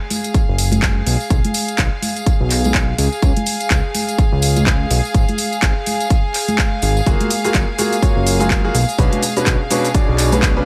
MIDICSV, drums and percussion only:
0, 0, Header, 1, 2, 480
1, 0, Start_track
1, 0, Key_signature, 6, "major"
1, 0, Tempo, 480000
1, 1305, Time_signature, 4, 2, 24, 8
1, 10651, End_track
2, 0, Start_track
2, 0, Title_t, "Drums"
2, 104, Note_on_c, 9, 46, 91
2, 106, Note_on_c, 9, 63, 70
2, 109, Note_on_c, 9, 54, 90
2, 204, Note_off_c, 9, 46, 0
2, 206, Note_off_c, 9, 63, 0
2, 209, Note_off_c, 9, 54, 0
2, 240, Note_on_c, 9, 54, 53
2, 244, Note_on_c, 9, 42, 55
2, 340, Note_off_c, 9, 54, 0
2, 344, Note_off_c, 9, 42, 0
2, 344, Note_on_c, 9, 36, 118
2, 344, Note_on_c, 9, 42, 65
2, 344, Note_on_c, 9, 54, 38
2, 444, Note_off_c, 9, 36, 0
2, 444, Note_off_c, 9, 42, 0
2, 444, Note_off_c, 9, 54, 0
2, 584, Note_on_c, 9, 46, 103
2, 586, Note_on_c, 9, 54, 97
2, 684, Note_off_c, 9, 46, 0
2, 686, Note_off_c, 9, 54, 0
2, 717, Note_on_c, 9, 63, 95
2, 721, Note_on_c, 9, 54, 45
2, 724, Note_on_c, 9, 42, 54
2, 817, Note_off_c, 9, 63, 0
2, 821, Note_off_c, 9, 54, 0
2, 824, Note_off_c, 9, 42, 0
2, 824, Note_on_c, 9, 36, 102
2, 824, Note_on_c, 9, 39, 126
2, 824, Note_on_c, 9, 42, 38
2, 826, Note_on_c, 9, 54, 38
2, 924, Note_off_c, 9, 36, 0
2, 924, Note_off_c, 9, 39, 0
2, 924, Note_off_c, 9, 42, 0
2, 926, Note_off_c, 9, 54, 0
2, 1065, Note_on_c, 9, 46, 91
2, 1066, Note_on_c, 9, 54, 94
2, 1165, Note_off_c, 9, 46, 0
2, 1166, Note_off_c, 9, 54, 0
2, 1202, Note_on_c, 9, 54, 49
2, 1301, Note_off_c, 9, 54, 0
2, 1301, Note_on_c, 9, 54, 39
2, 1304, Note_on_c, 9, 36, 125
2, 1305, Note_on_c, 9, 42, 65
2, 1401, Note_off_c, 9, 54, 0
2, 1404, Note_off_c, 9, 36, 0
2, 1405, Note_off_c, 9, 42, 0
2, 1445, Note_on_c, 9, 42, 51
2, 1448, Note_on_c, 9, 63, 91
2, 1540, Note_on_c, 9, 54, 101
2, 1545, Note_off_c, 9, 42, 0
2, 1545, Note_on_c, 9, 46, 108
2, 1548, Note_off_c, 9, 63, 0
2, 1640, Note_off_c, 9, 54, 0
2, 1645, Note_off_c, 9, 46, 0
2, 1685, Note_on_c, 9, 42, 55
2, 1688, Note_on_c, 9, 54, 48
2, 1781, Note_off_c, 9, 54, 0
2, 1781, Note_on_c, 9, 54, 43
2, 1784, Note_on_c, 9, 36, 102
2, 1785, Note_off_c, 9, 42, 0
2, 1785, Note_on_c, 9, 39, 120
2, 1785, Note_on_c, 9, 42, 68
2, 1881, Note_off_c, 9, 54, 0
2, 1884, Note_off_c, 9, 36, 0
2, 1885, Note_off_c, 9, 39, 0
2, 1885, Note_off_c, 9, 42, 0
2, 2023, Note_on_c, 9, 63, 70
2, 2025, Note_on_c, 9, 46, 91
2, 2026, Note_on_c, 9, 54, 90
2, 2123, Note_off_c, 9, 63, 0
2, 2125, Note_off_c, 9, 46, 0
2, 2126, Note_off_c, 9, 54, 0
2, 2165, Note_on_c, 9, 42, 51
2, 2169, Note_on_c, 9, 54, 52
2, 2263, Note_off_c, 9, 54, 0
2, 2263, Note_on_c, 9, 54, 35
2, 2264, Note_on_c, 9, 36, 123
2, 2265, Note_off_c, 9, 42, 0
2, 2265, Note_on_c, 9, 42, 64
2, 2363, Note_off_c, 9, 54, 0
2, 2364, Note_off_c, 9, 36, 0
2, 2365, Note_off_c, 9, 42, 0
2, 2505, Note_on_c, 9, 39, 38
2, 2505, Note_on_c, 9, 46, 108
2, 2508, Note_on_c, 9, 54, 90
2, 2605, Note_off_c, 9, 39, 0
2, 2605, Note_off_c, 9, 46, 0
2, 2608, Note_off_c, 9, 54, 0
2, 2645, Note_on_c, 9, 42, 52
2, 2650, Note_on_c, 9, 54, 57
2, 2656, Note_on_c, 9, 63, 97
2, 2744, Note_on_c, 9, 36, 105
2, 2744, Note_on_c, 9, 39, 127
2, 2745, Note_off_c, 9, 42, 0
2, 2745, Note_on_c, 9, 42, 37
2, 2750, Note_off_c, 9, 54, 0
2, 2756, Note_off_c, 9, 63, 0
2, 2844, Note_off_c, 9, 36, 0
2, 2844, Note_off_c, 9, 39, 0
2, 2845, Note_off_c, 9, 42, 0
2, 2984, Note_on_c, 9, 46, 92
2, 2984, Note_on_c, 9, 54, 99
2, 3084, Note_off_c, 9, 46, 0
2, 3084, Note_off_c, 9, 54, 0
2, 3125, Note_on_c, 9, 54, 48
2, 3224, Note_on_c, 9, 36, 121
2, 3224, Note_on_c, 9, 42, 63
2, 3225, Note_off_c, 9, 54, 0
2, 3229, Note_on_c, 9, 54, 41
2, 3324, Note_off_c, 9, 36, 0
2, 3324, Note_off_c, 9, 42, 0
2, 3329, Note_off_c, 9, 54, 0
2, 3365, Note_on_c, 9, 42, 50
2, 3368, Note_on_c, 9, 63, 86
2, 3460, Note_on_c, 9, 54, 99
2, 3465, Note_off_c, 9, 42, 0
2, 3465, Note_on_c, 9, 46, 109
2, 3468, Note_off_c, 9, 63, 0
2, 3560, Note_off_c, 9, 54, 0
2, 3565, Note_off_c, 9, 46, 0
2, 3605, Note_on_c, 9, 42, 52
2, 3605, Note_on_c, 9, 54, 50
2, 3705, Note_off_c, 9, 42, 0
2, 3705, Note_off_c, 9, 54, 0
2, 3705, Note_on_c, 9, 36, 107
2, 3705, Note_on_c, 9, 39, 121
2, 3705, Note_on_c, 9, 42, 64
2, 3712, Note_on_c, 9, 54, 40
2, 3805, Note_off_c, 9, 36, 0
2, 3805, Note_off_c, 9, 39, 0
2, 3805, Note_off_c, 9, 42, 0
2, 3812, Note_off_c, 9, 54, 0
2, 3944, Note_on_c, 9, 54, 92
2, 3945, Note_on_c, 9, 46, 92
2, 3947, Note_on_c, 9, 63, 64
2, 4044, Note_off_c, 9, 54, 0
2, 4045, Note_off_c, 9, 46, 0
2, 4047, Note_off_c, 9, 63, 0
2, 4086, Note_on_c, 9, 42, 52
2, 4089, Note_on_c, 9, 54, 57
2, 4183, Note_off_c, 9, 54, 0
2, 4183, Note_on_c, 9, 54, 37
2, 4185, Note_off_c, 9, 42, 0
2, 4185, Note_on_c, 9, 36, 127
2, 4185, Note_on_c, 9, 42, 60
2, 4283, Note_off_c, 9, 54, 0
2, 4285, Note_off_c, 9, 36, 0
2, 4285, Note_off_c, 9, 42, 0
2, 4420, Note_on_c, 9, 54, 92
2, 4425, Note_on_c, 9, 46, 109
2, 4520, Note_off_c, 9, 54, 0
2, 4525, Note_off_c, 9, 46, 0
2, 4563, Note_on_c, 9, 54, 52
2, 4565, Note_on_c, 9, 42, 51
2, 4567, Note_on_c, 9, 63, 96
2, 4663, Note_off_c, 9, 54, 0
2, 4665, Note_off_c, 9, 42, 0
2, 4665, Note_on_c, 9, 36, 110
2, 4665, Note_on_c, 9, 39, 124
2, 4666, Note_on_c, 9, 42, 36
2, 4667, Note_off_c, 9, 63, 0
2, 4668, Note_on_c, 9, 54, 35
2, 4765, Note_off_c, 9, 36, 0
2, 4765, Note_off_c, 9, 39, 0
2, 4766, Note_off_c, 9, 42, 0
2, 4768, Note_off_c, 9, 54, 0
2, 4905, Note_on_c, 9, 46, 94
2, 4906, Note_on_c, 9, 54, 99
2, 5005, Note_off_c, 9, 46, 0
2, 5006, Note_off_c, 9, 54, 0
2, 5049, Note_on_c, 9, 54, 48
2, 5145, Note_on_c, 9, 36, 127
2, 5145, Note_on_c, 9, 42, 61
2, 5149, Note_off_c, 9, 54, 0
2, 5153, Note_on_c, 9, 54, 40
2, 5245, Note_off_c, 9, 36, 0
2, 5245, Note_off_c, 9, 42, 0
2, 5253, Note_off_c, 9, 54, 0
2, 5286, Note_on_c, 9, 42, 49
2, 5290, Note_on_c, 9, 63, 86
2, 5380, Note_on_c, 9, 54, 88
2, 5385, Note_on_c, 9, 46, 108
2, 5386, Note_off_c, 9, 42, 0
2, 5390, Note_off_c, 9, 63, 0
2, 5480, Note_off_c, 9, 54, 0
2, 5485, Note_off_c, 9, 46, 0
2, 5524, Note_on_c, 9, 54, 55
2, 5526, Note_on_c, 9, 42, 49
2, 5620, Note_off_c, 9, 54, 0
2, 5620, Note_on_c, 9, 54, 35
2, 5624, Note_on_c, 9, 36, 104
2, 5624, Note_on_c, 9, 39, 117
2, 5625, Note_off_c, 9, 42, 0
2, 5625, Note_on_c, 9, 42, 62
2, 5720, Note_off_c, 9, 54, 0
2, 5724, Note_off_c, 9, 36, 0
2, 5724, Note_off_c, 9, 39, 0
2, 5725, Note_off_c, 9, 42, 0
2, 5863, Note_on_c, 9, 54, 84
2, 5864, Note_on_c, 9, 46, 89
2, 5869, Note_on_c, 9, 63, 57
2, 5963, Note_off_c, 9, 54, 0
2, 5964, Note_off_c, 9, 46, 0
2, 5969, Note_off_c, 9, 63, 0
2, 6005, Note_on_c, 9, 42, 50
2, 6009, Note_on_c, 9, 54, 49
2, 6103, Note_off_c, 9, 54, 0
2, 6103, Note_on_c, 9, 54, 41
2, 6104, Note_off_c, 9, 42, 0
2, 6104, Note_on_c, 9, 36, 127
2, 6104, Note_on_c, 9, 42, 60
2, 6203, Note_off_c, 9, 54, 0
2, 6204, Note_off_c, 9, 36, 0
2, 6204, Note_off_c, 9, 42, 0
2, 6343, Note_on_c, 9, 39, 36
2, 6344, Note_on_c, 9, 46, 109
2, 6346, Note_on_c, 9, 54, 85
2, 6443, Note_off_c, 9, 39, 0
2, 6443, Note_off_c, 9, 46, 0
2, 6446, Note_off_c, 9, 54, 0
2, 6483, Note_on_c, 9, 63, 89
2, 6484, Note_on_c, 9, 42, 52
2, 6492, Note_on_c, 9, 54, 48
2, 6583, Note_off_c, 9, 63, 0
2, 6584, Note_off_c, 9, 42, 0
2, 6584, Note_on_c, 9, 36, 109
2, 6584, Note_on_c, 9, 39, 119
2, 6584, Note_on_c, 9, 42, 35
2, 6585, Note_off_c, 9, 54, 0
2, 6585, Note_on_c, 9, 54, 36
2, 6684, Note_off_c, 9, 36, 0
2, 6684, Note_off_c, 9, 39, 0
2, 6684, Note_off_c, 9, 42, 0
2, 6685, Note_off_c, 9, 54, 0
2, 6820, Note_on_c, 9, 54, 86
2, 6825, Note_on_c, 9, 46, 87
2, 6919, Note_off_c, 9, 54, 0
2, 6925, Note_off_c, 9, 46, 0
2, 6968, Note_on_c, 9, 54, 53
2, 7064, Note_on_c, 9, 36, 119
2, 7065, Note_on_c, 9, 42, 63
2, 7067, Note_off_c, 9, 54, 0
2, 7067, Note_on_c, 9, 54, 41
2, 7068, Note_on_c, 9, 82, 33
2, 7164, Note_off_c, 9, 36, 0
2, 7165, Note_off_c, 9, 42, 0
2, 7167, Note_off_c, 9, 54, 0
2, 7168, Note_off_c, 9, 82, 0
2, 7205, Note_on_c, 9, 42, 50
2, 7208, Note_on_c, 9, 63, 92
2, 7305, Note_off_c, 9, 42, 0
2, 7305, Note_on_c, 9, 46, 105
2, 7305, Note_on_c, 9, 54, 84
2, 7308, Note_off_c, 9, 63, 0
2, 7308, Note_on_c, 9, 82, 79
2, 7405, Note_off_c, 9, 46, 0
2, 7405, Note_off_c, 9, 54, 0
2, 7408, Note_off_c, 9, 82, 0
2, 7445, Note_on_c, 9, 42, 51
2, 7445, Note_on_c, 9, 54, 45
2, 7448, Note_on_c, 9, 82, 44
2, 7544, Note_off_c, 9, 54, 0
2, 7544, Note_on_c, 9, 36, 101
2, 7544, Note_on_c, 9, 54, 40
2, 7545, Note_off_c, 9, 42, 0
2, 7545, Note_on_c, 9, 39, 107
2, 7545, Note_on_c, 9, 42, 63
2, 7548, Note_off_c, 9, 82, 0
2, 7548, Note_on_c, 9, 82, 34
2, 7644, Note_off_c, 9, 36, 0
2, 7644, Note_off_c, 9, 54, 0
2, 7645, Note_off_c, 9, 39, 0
2, 7645, Note_off_c, 9, 42, 0
2, 7648, Note_off_c, 9, 82, 0
2, 7785, Note_on_c, 9, 46, 88
2, 7788, Note_on_c, 9, 82, 74
2, 7792, Note_on_c, 9, 54, 82
2, 7792, Note_on_c, 9, 63, 65
2, 7885, Note_off_c, 9, 46, 0
2, 7888, Note_off_c, 9, 82, 0
2, 7892, Note_off_c, 9, 54, 0
2, 7892, Note_off_c, 9, 63, 0
2, 7926, Note_on_c, 9, 42, 50
2, 7926, Note_on_c, 9, 54, 52
2, 7929, Note_on_c, 9, 82, 46
2, 8025, Note_off_c, 9, 54, 0
2, 8025, Note_on_c, 9, 36, 123
2, 8025, Note_on_c, 9, 54, 37
2, 8026, Note_off_c, 9, 42, 0
2, 8026, Note_on_c, 9, 42, 58
2, 8029, Note_off_c, 9, 82, 0
2, 8029, Note_on_c, 9, 82, 32
2, 8125, Note_off_c, 9, 36, 0
2, 8125, Note_off_c, 9, 54, 0
2, 8126, Note_off_c, 9, 42, 0
2, 8129, Note_off_c, 9, 82, 0
2, 8266, Note_on_c, 9, 46, 104
2, 8269, Note_on_c, 9, 54, 95
2, 8269, Note_on_c, 9, 82, 76
2, 8366, Note_off_c, 9, 46, 0
2, 8369, Note_off_c, 9, 54, 0
2, 8369, Note_off_c, 9, 82, 0
2, 8399, Note_on_c, 9, 63, 81
2, 8405, Note_on_c, 9, 54, 56
2, 8406, Note_on_c, 9, 42, 48
2, 8409, Note_on_c, 9, 82, 44
2, 8499, Note_off_c, 9, 63, 0
2, 8505, Note_off_c, 9, 54, 0
2, 8505, Note_on_c, 9, 36, 106
2, 8506, Note_off_c, 9, 42, 0
2, 8506, Note_on_c, 9, 39, 114
2, 8506, Note_on_c, 9, 42, 35
2, 8509, Note_off_c, 9, 82, 0
2, 8509, Note_on_c, 9, 82, 35
2, 8511, Note_on_c, 9, 54, 41
2, 8605, Note_off_c, 9, 36, 0
2, 8606, Note_off_c, 9, 39, 0
2, 8606, Note_off_c, 9, 42, 0
2, 8609, Note_off_c, 9, 82, 0
2, 8611, Note_off_c, 9, 54, 0
2, 8746, Note_on_c, 9, 46, 90
2, 8748, Note_on_c, 9, 54, 99
2, 8749, Note_on_c, 9, 82, 76
2, 8846, Note_off_c, 9, 46, 0
2, 8848, Note_off_c, 9, 54, 0
2, 8849, Note_off_c, 9, 82, 0
2, 8885, Note_on_c, 9, 54, 52
2, 8890, Note_on_c, 9, 82, 44
2, 8985, Note_off_c, 9, 54, 0
2, 8985, Note_on_c, 9, 36, 117
2, 8986, Note_on_c, 9, 42, 64
2, 8989, Note_off_c, 9, 82, 0
2, 8989, Note_on_c, 9, 82, 34
2, 9085, Note_off_c, 9, 36, 0
2, 9086, Note_off_c, 9, 42, 0
2, 9089, Note_off_c, 9, 82, 0
2, 9126, Note_on_c, 9, 42, 52
2, 9128, Note_on_c, 9, 63, 75
2, 9226, Note_off_c, 9, 42, 0
2, 9226, Note_on_c, 9, 46, 104
2, 9228, Note_off_c, 9, 63, 0
2, 9229, Note_on_c, 9, 82, 84
2, 9230, Note_on_c, 9, 54, 84
2, 9326, Note_off_c, 9, 46, 0
2, 9329, Note_off_c, 9, 82, 0
2, 9330, Note_off_c, 9, 54, 0
2, 9365, Note_on_c, 9, 42, 51
2, 9366, Note_on_c, 9, 54, 45
2, 9368, Note_on_c, 9, 82, 47
2, 9461, Note_off_c, 9, 54, 0
2, 9461, Note_on_c, 9, 54, 38
2, 9465, Note_off_c, 9, 42, 0
2, 9465, Note_on_c, 9, 36, 98
2, 9465, Note_on_c, 9, 39, 116
2, 9465, Note_on_c, 9, 42, 64
2, 9468, Note_off_c, 9, 82, 0
2, 9468, Note_on_c, 9, 82, 35
2, 9561, Note_off_c, 9, 54, 0
2, 9565, Note_off_c, 9, 36, 0
2, 9565, Note_off_c, 9, 39, 0
2, 9565, Note_off_c, 9, 42, 0
2, 9568, Note_off_c, 9, 82, 0
2, 9705, Note_on_c, 9, 46, 86
2, 9708, Note_on_c, 9, 82, 78
2, 9709, Note_on_c, 9, 63, 55
2, 9710, Note_on_c, 9, 54, 92
2, 9805, Note_off_c, 9, 46, 0
2, 9808, Note_off_c, 9, 82, 0
2, 9809, Note_off_c, 9, 63, 0
2, 9810, Note_off_c, 9, 54, 0
2, 9846, Note_on_c, 9, 42, 53
2, 9849, Note_on_c, 9, 82, 46
2, 9850, Note_on_c, 9, 54, 49
2, 9944, Note_off_c, 9, 54, 0
2, 9944, Note_on_c, 9, 54, 37
2, 9945, Note_off_c, 9, 42, 0
2, 9945, Note_on_c, 9, 36, 118
2, 9945, Note_on_c, 9, 42, 62
2, 9948, Note_off_c, 9, 82, 0
2, 9948, Note_on_c, 9, 82, 34
2, 10044, Note_off_c, 9, 54, 0
2, 10045, Note_off_c, 9, 36, 0
2, 10045, Note_off_c, 9, 42, 0
2, 10048, Note_off_c, 9, 82, 0
2, 10184, Note_on_c, 9, 39, 36
2, 10185, Note_on_c, 9, 46, 103
2, 10186, Note_on_c, 9, 54, 93
2, 10188, Note_on_c, 9, 82, 83
2, 10284, Note_off_c, 9, 39, 0
2, 10285, Note_off_c, 9, 46, 0
2, 10286, Note_off_c, 9, 54, 0
2, 10288, Note_off_c, 9, 82, 0
2, 10324, Note_on_c, 9, 42, 54
2, 10324, Note_on_c, 9, 63, 92
2, 10326, Note_on_c, 9, 54, 50
2, 10328, Note_on_c, 9, 82, 48
2, 10424, Note_off_c, 9, 42, 0
2, 10424, Note_off_c, 9, 63, 0
2, 10424, Note_on_c, 9, 39, 118
2, 10425, Note_on_c, 9, 36, 104
2, 10425, Note_on_c, 9, 42, 38
2, 10426, Note_off_c, 9, 54, 0
2, 10428, Note_off_c, 9, 82, 0
2, 10428, Note_on_c, 9, 82, 36
2, 10432, Note_on_c, 9, 54, 35
2, 10524, Note_off_c, 9, 39, 0
2, 10525, Note_off_c, 9, 36, 0
2, 10525, Note_off_c, 9, 42, 0
2, 10528, Note_off_c, 9, 82, 0
2, 10532, Note_off_c, 9, 54, 0
2, 10651, End_track
0, 0, End_of_file